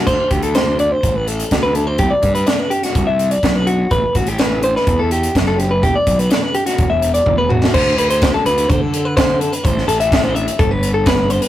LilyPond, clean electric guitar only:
\new Staff \with { instrumentName = "Clean electric guitar" } { \time 4/4 \key d \mixolydian \tempo 4 = 125 c''8 g'16 a'16 c''8 d''16 c''8 b'16 a'8 r16 b'16 a'16 c''16 | g'16 d''8 b'16 d''16 b'16 g'16 fis'8 e''8 d''8 b'16 fis'8 | b'8 fis'16 g'16 b'8 c''16 b'8 a'16 g'8 r16 a'16 g'16 b'16 | g'16 d''8 b'16 d''16 b'16 g'16 fis'8 e''8 d''8 b'16 fis'8 |
c''8 b'16 c''8 a'16 b'8 c''16 a'8 b'16 c''8 a'16 b'16 | c''8 a'16 e''8 c''16 e''8 a'16 b'8 a'16 b'8 c''16 b'16 | }